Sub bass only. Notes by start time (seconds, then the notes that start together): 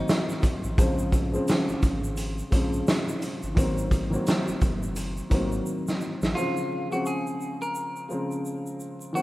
0.64 A1
0.78 A#1
1.69 G#1
1.83 G#1
2.52 A#1
3.43 G1
3.57 G#1
4.48 F#1
4.62 F#1
5.31 G#1
6.22 A1